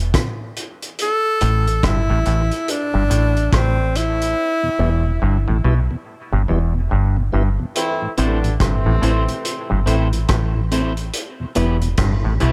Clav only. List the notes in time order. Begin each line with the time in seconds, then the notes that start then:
1.41 A2
1.84 G2
2.10 A2
2.26 A2
2.94 G2
3.10 A2
3.53 A2
4.79 E2
5.22 G2
5.48 A2
5.64 B2
6.33 G2
6.48 E2
6.91 G2
7.34 G2
8.18 A2
8.60 G2
8.86 A2
9.02 A2
9.70 G2
9.86 A2
10.29 A2
11.56 E2
11.98 G2
12.24 A2
12.41 B2